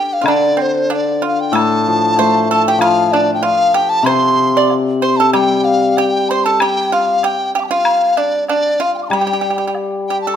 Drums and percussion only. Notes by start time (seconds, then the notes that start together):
0.26 high woodblock
0.90 low woodblock
1.55 high woodblock
2.17 low woodblock
2.81 high woodblock
3.43 low woodblock
4.06 high woodblock
4.70 low woodblock
5.34 high woodblock
5.97 low woodblock
6.60 high woodblock
7.23 low woodblock
7.85 high woodblock
8.48 low woodblock
9.11 high woodblock
9.75 low woodblock